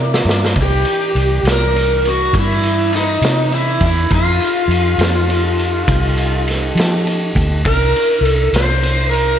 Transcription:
0.00 0.23 C3 loud
0.00 0.53 E4 medium
0.00 0.54 A#4 medium
0.00 0.53 D5 medium
0.14 snare loud
0.25 0.54 G2 loud
0.25 snare loud
0.44 snare loud
0.56 0.84 C2 loud
0.56 0.86 D#4 medium
0.56 0.87 F4 medium
0.56 0.86 B4 medium
0.56 kick loud
0.56 ride medium
0.62 1.51 G4 medium
0.85 4.07 E3 medium
0.85 4.07 A#4 medium
0.85 4.07 D5 medium
0.85 ride medium
1.15 1.43 C2 medium
1.15 ride medium
1.43 2.29 C2 medium
1.43 ride medium
1.47 2.08 A#4 loud
1.47 snare loud
1.76 ride medium
2.05 2.34 F#4 medium
2.05 ride medium
2.33 3.18 G2 medium
2.33 kick loud
2.33 ride medium
2.39 2.95 E4 medium
2.63 ride medium
2.93 3.54 D#4 medium
2.93 snare soft
2.93 ride medium
3.22 3.77 C3 medium
3.22 snare loud
3.22 ride medium
3.52 3.84 E4 medium
3.52 ride medium
3.80 4.08 E2 medium
3.80 kick medium
3.80 ride medium
3.86 4.14 E4 medium
4.10 4.38 F2 loud
4.10 4.41 E4 medium
4.10 4.41 G#4 medium
4.10 4.41 A#4 medium
4.10 kick loud
4.10 ride medium
4.14 6.45 F4 medium
4.40 7.62 D#4 medium
4.40 7.63 G4 medium
4.40 7.63 A4 medium
4.40 ride medium
4.68 4.96 F2 medium
4.68 ride medium
4.98 5.83 F2 medium
4.98 snare loud
4.98 ride medium
5.30 ride medium
5.59 ride medium
5.88 6.72 C2 loud
5.88 kick loud
5.88 ride medium
6.18 ride medium
6.48 snare soft
6.48 ride medium
6.75 7.31 F3 medium
6.75 ride medium
6.80 snare loud
7.07 ride medium
7.35 7.63 D2 loud
7.35 kick medium
7.35 ride medium
7.65 7.92 C2 loud
7.65 9.39 D4 medium
7.65 9.39 E4 medium
7.65 9.39 A#4 medium
7.65 8.23 A#4 loud
7.65 kick loud
7.65 ride medium
7.96 ride medium
8.21 8.49 C2 medium
8.21 8.50 A4 loud
8.25 ride medium
8.53 9.38 C2 medium
8.53 9.09 C5 medium
8.53 snare loud
8.53 ride medium
8.83 ride medium
9.10 9.39 A#4 medium
9.10 ride medium

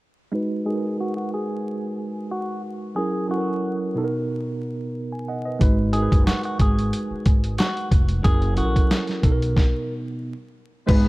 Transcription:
0.32 0.60 G#3 medium
0.32 0.61 D#4 medium
0.32 0.61 F#4 medium
0.32 0.62 B4 loud
0.65 1.75 G#3 medium
0.65 1.76 D#4 medium
0.65 1.76 F#4 medium
0.65 0.96 G#4 medium
0.65 0.75 A#4 medium
0.75 1.80 B4 medium
1.01 1.16 F#4 medium
1.17 1.31 F#4 medium
1.34 2.28 G#4 medium
2.31 2.61 F#4 medium
2.95 3.24 F#3 medium
2.95 3.24 C#4 medium
2.95 3.25 E4 medium
2.95 3.26 G#4 loud
2.95 3.25 A#4 medium
3.28 3.95 F#3 medium
3.28 3.96 C#4 medium
3.28 3.96 E4 medium
3.28 3.78 F#4 medium
3.28 3.38 A4 medium
3.38 4.00 A#4 medium
3.95 5.05 B2 medium
3.95 5.05 B3 medium
3.95 5.06 D#4 medium
3.95 4.04 A4 medium
4.04 4.66 A#4 loud
5.12 5.27 G#5 medium
5.28 5.44 D#5 medium
5.28 5.45 F#5 medium
5.45 5.61 B4 medium
5.45 5.77 D#5 medium
5.59 6.08 G#1 loud
5.59 5.88 G#3 medium
5.59 5.88 D#4 medium
5.59 5.89 F#4 medium
5.59 5.89 B4 loud
5.59 kick loud
5.59 closed hi-hat medium
5.93 7.03 G#3 medium
5.93 7.03 D#4 medium
5.93 7.04 F#4 medium
5.93 6.23 G#4 medium
5.93 6.02 A#4 medium
5.93 closed hi-hat medium
6.03 7.08 B4 medium
6.12 6.26 F#1 medium
6.12 kick medium
6.12 closed hi-hat medium
6.27 6.43 F#4 medium
6.27 snare loud
6.27 closed hi-hat medium
6.43 6.59 F#4 medium
6.43 closed hi-hat soft
6.59 6.90 G#1 medium
6.59 7.56 G#4 medium
6.59 kick medium
6.59 closed hi-hat medium
6.79 closed hi-hat medium
6.93 closed hi-hat medium
7.11 muted upright bass stroke soft
7.26 7.56 G#1 medium
7.26 kick medium
7.26 closed hi-hat medium
7.44 closed hi-hat medium
7.58 7.88 F#4 medium
7.58 snare loud
7.58 closed hi-hat loud
7.77 closed hi-hat soft
7.92 8.22 F1 medium
7.92 kick medium
7.92 closed hi-hat medium
8.09 closed hi-hat medium
8.22 8.55 F#1 loud
8.22 8.51 F#3 medium
8.22 8.52 C#4 medium
8.22 8.52 E4 medium
8.22 8.54 G#4 loud
8.22 8.53 A#4 medium
8.22 kick loud
8.22 closed hi-hat medium
8.42 closed hi-hat soft
8.55 8.74 A#1 medium
8.55 9.22 F#3 medium
8.55 9.23 C#4 medium
8.55 9.24 E4 medium
8.55 9.05 F#4 medium
8.55 8.65 A4 medium
8.55 closed hi-hat medium
8.65 9.27 A#4 medium
8.76 kick medium
8.76 closed hi-hat medium
8.91 snare loud
8.91 closed hi-hat medium
9.07 snare soft
9.07 closed hi-hat soft
9.22 9.53 B1 loud
9.22 10.32 B2 loud
9.22 10.33 B3 medium
9.22 10.33 D#4 medium
9.22 9.31 A4 medium
9.22 kick medium
9.22 closed hi-hat medium
9.32 9.94 A#4 loud
9.42 closed hi-hat medium
9.57 kick loud
9.57 snare medium
10.87 11.08 G#1 loud
10.87 11.08 G#3 medium
10.87 11.08 B3 medium
10.87 11.08 D#4 medium
10.87 11.08 F#4 medium
10.87 11.08 G#4 medium
10.87 11.08 B4 loud
10.87 kick loud
10.87 crash medium

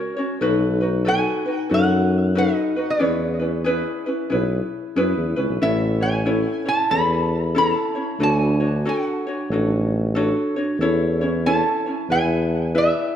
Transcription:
0.00 0.17 C#4 medium
0.00 0.17 F#4 medium
0.00 0.17 A#4 medium
0.00 0.15 C#5 medium
0.17 0.41 C#4 medium
0.17 0.41 F#4 medium
0.17 0.40 C#5 medium
0.41 1.26 B1 medium
0.41 0.82 D#4 medium
0.41 0.81 F#4 medium
0.41 0.80 A4 medium
0.41 0.80 B4 medium
0.81 1.05 D#4 soft
0.81 1.05 F#4 soft
0.81 1.04 B4 medium
1.05 1.47 D#4 medium
1.05 1.46 F#4 medium
1.05 1.45 A4 medium
1.05 1.44 B4 medium
1.05 1.58 G#5 medium
1.46 1.69 D#4 soft
1.46 1.70 F#4 soft
1.46 1.69 B4 medium
1.58 1.74 F#5 medium
1.70 2.56 F#2 medium
1.70 2.34 D#4 medium
1.70 2.35 F#4 medium
1.70 2.34 A4 medium
1.70 2.36 B4 medium
1.74 2.40 F#5 loud
2.35 2.76 D#4 medium
2.35 2.76 F#4 medium
2.35 2.76 A4 medium
2.35 2.75 B4 medium
2.35 2.90 D#5 medium
2.76 2.99 D#4 soft
2.76 3.00 F#4 soft
2.76 2.99 B4 soft
2.90 5.33 C#5 medium
2.99 3.86 E2 medium
2.99 3.40 C#4 medium
2.99 3.40 E4 medium
2.99 3.40 G#4 medium
2.99 3.38 B4 medium
3.39 3.65 C#4 soft
3.39 3.65 E4 soft
3.39 3.65 B4 soft
3.64 4.06 C#4 medium
3.64 4.06 E4 medium
3.64 4.06 G#4 medium
3.64 4.05 B4 medium
4.06 4.29 C#4 soft
4.06 4.30 E4 soft
4.06 4.31 B4 medium
4.30 4.60 B1 medium
4.30 4.96 C#4 medium
4.30 4.97 E4 medium
4.30 4.95 G#4 medium
4.30 4.96 B4 medium
4.96 5.14 F#2 medium
4.96 5.36 C#4 medium
4.96 5.36 E4 medium
4.96 5.36 G#4 medium
4.96 5.35 B4 medium
5.17 5.35 E2 medium
5.36 5.48 C#2 medium
5.36 5.60 C#4 soft
5.36 5.61 E4 medium
5.36 5.61 B4 medium
5.50 5.60 B1 medium
5.61 6.46 A1 medium
5.61 6.01 C#4 medium
5.61 6.01 E4 medium
5.61 6.01 A4 medium
5.61 6.00 C#5 medium
5.61 6.03 E5 medium
6.01 6.25 C#4 soft
6.01 6.25 E4 soft
6.01 6.26 C#5 soft
6.01 6.68 G#5 medium
6.25 6.66 C#4 medium
6.25 6.65 E4 medium
6.25 6.66 A4 medium
6.25 6.64 C#5 medium
6.65 6.89 C#4 soft
6.65 6.90 E4 soft
6.65 6.90 C#5 soft
6.65 6.91 A5 medium
6.90 7.75 E2 medium
6.90 7.56 C#4 medium
6.90 7.54 E4 medium
6.90 7.54 A4 medium
6.90 7.56 C#5 medium
6.90 7.58 B5 loud
7.55 7.96 C#4 medium
7.55 7.95 E4 medium
7.55 7.95 A4 medium
7.55 7.94 C#5 medium
7.55 8.23 A5 medium
7.95 8.20 C#4 soft
7.95 8.20 E4 soft
7.95 8.20 C#5 soft
8.20 8.91 D2 medium
8.20 8.60 D4 medium
8.20 8.59 F#4 medium
8.20 8.60 A4 medium
8.20 8.59 C#5 medium
8.20 8.89 G#5 medium
8.60 8.84 D4 soft
8.60 8.85 F#4 soft
8.60 8.85 C#5 soft
8.85 9.25 D4 medium
8.85 9.26 F#4 medium
8.85 9.25 A4 medium
8.85 9.25 C#5 medium
8.85 10.53 F#5 medium
9.27 9.51 D4 soft
9.27 9.51 F#4 soft
9.27 9.51 C#5 medium
9.50 10.34 A1 medium
9.50 10.15 D4 medium
9.50 10.15 F#4 medium
9.50 10.14 A4 medium
9.50 10.15 C#5 medium
10.15 10.56 D4 medium
10.15 10.56 F#4 medium
10.15 10.55 A4 medium
10.15 10.55 C#5 medium
10.56 10.81 D4 soft
10.56 10.81 F#4 medium
10.56 10.80 C#5 medium
10.79 11.64 E2 medium
10.79 11.21 C#4 medium
10.79 11.21 E4 medium
10.79 11.20 A4 medium
10.79 11.20 C#5 medium
11.21 11.45 C#4 medium
11.21 11.46 E4 medium
11.21 11.45 C#5 medium
11.46 11.86 C#4 medium
11.46 11.86 E4 medium
11.46 11.86 A4 medium
11.46 11.85 C#5 medium
11.46 12.11 A5 medium
11.86 12.11 C#4 soft
11.86 12.10 E4 soft
11.86 12.10 C#5 soft
12.09 12.94 E2 loud
12.09 12.75 E4 medium
12.09 12.74 G#4 medium
12.09 12.73 B4 medium
12.09 12.75 E5 medium
12.09 12.71 G#5 medium
12.75 13.15 E4 medium
12.75 13.15 G#4 medium
12.75 13.15 B4 medium
12.75 13.14 E5 medium
12.75 13.16 E5 medium

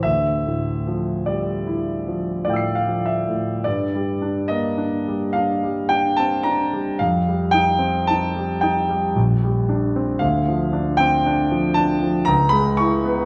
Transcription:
0.03 3.62 D2 soft
0.03 1.27 E5 medium
0.46 1.12 A2 soft
0.87 1.52 F3 soft
1.26 1.92 G3 soft
1.26 2.43 D5 soft
1.67 2.31 E4 soft
2.08 2.71 F3 soft
2.45 3.11 A2 soft
2.45 2.76 D5 medium
2.45 2.74 F5 soft
2.50 3.63 G5 soft
2.50 3.65 E6 soft
2.56 3.66 C7 soft
2.75 3.06 F5 medium
2.88 3.51 F3 soft
3.06 3.65 E5 soft
3.29 3.66 A2 soft
3.64 6.96 G2 soft
3.64 4.49 D5 medium
3.95 4.39 G3 soft
4.22 4.67 D4 soft
4.48 4.96 A#3 soft
4.48 5.34 D#5 medium
4.78 5.24 D4 soft
5.08 5.53 G3 soft
5.33 5.80 D4 soft
5.33 5.90 F5 medium
5.63 6.08 G3 soft
5.89 6.35 D4 soft
5.89 6.18 G5 medium
6.17 6.46 C4 soft
6.17 6.45 A5 medium
6.43 6.89 D4 soft
6.43 6.99 A#5 medium
6.73 7.00 G3 soft
6.99 9.12 F2 soft
6.99 7.54 F5 medium
7.28 7.71 G3 soft
7.51 7.98 D#4 soft
7.51 8.07 G5 medium
7.79 8.24 C4 soft
8.07 8.53 D#4 soft
8.07 8.62 A5 medium
8.36 8.79 G3 soft
8.61 9.06 D#4 soft
8.61 9.15 G5 medium
8.89 9.16 G3 soft
9.15 10.18 A#1 soft
9.44 9.85 G3 soft
9.69 10.11 D4 soft
9.96 10.21 C4 soft
10.19 12.23 D2 soft
10.19 10.99 F5 medium
10.48 10.90 F3 soft
10.73 11.15 D4 soft
10.97 11.41 C4 soft
10.97 11.75 G5 medium
11.26 11.67 D4 soft
11.51 11.92 F3 soft
11.74 12.17 D4 soft
11.74 12.26 A5 medium
12.03 12.28 F3 soft
12.25 13.25 C#2 soft
12.25 12.52 A#5 medium
12.49 12.94 G#3 soft
12.49 12.77 B5 medium
12.77 13.21 E4 soft
12.77 13.25 C#6 medium
13.04 13.25 B3 soft

